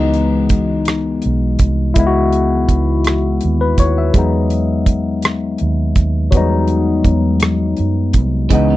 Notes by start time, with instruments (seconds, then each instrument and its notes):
Already playing: fingered electric bass C#2, tine electric piano E3 G#3 B3 D#4
0.14 closed hi-hat
0.49 kick, closed hi-hat
0.85 cross-stick, closed hi-hat
1.22 fingered electric bass B1, closed hi-hat
1.59 fingered electric bass C2, kick, closed hi-hat
1.94 fingered electric bass C#2, tine electric piano G#3 E4, kick, closed hi-hat
1.98 tine electric piano B3 E4
2.07 tine electric piano F#4
2.32 closed hi-hat
2.69 fingered electric bass C#2, kick, closed hi-hat
3.04 cross-stick, closed hi-hat
3.41 fingered electric bass D#2, closed hi-hat
3.61 tine electric piano B4
3.78 fingered electric bass D#2, tine electric piano C#5, kick, closed hi-hat
3.98 tine electric piano E5
4.13 fingered electric bass E2, tine electric piano F#3 G#3, kick, closed hi-hat
4.17 tine electric piano B3 D#4
4.50 closed hi-hat
4.86 kick, closed hi-hat
5.22 cross-stick, closed hi-hat
5.58 fingered electric bass D#2, closed hi-hat
5.96 fingered electric bass D#2, kick, closed hi-hat
6.31 fingered electric bass E2, tine electric piano F#3 G3 B3, kick, closed hi-hat
6.37 tine electric piano G#3 D#4
6.68 closed hi-hat
7.04 fingered electric bass E2, kick, closed hi-hat
7.40 cross-stick, closed hi-hat
7.77 fingered electric bass F#2, closed hi-hat
8.13 fingered electric bass C2, kick, closed hi-hat
8.49 fingered electric bass C#2, clean electric guitar C#3, tine electric piano E3 G#3 B3, kick, closed hi-hat
8.55 tine electric piano D#4
8.70 clean electric guitar B3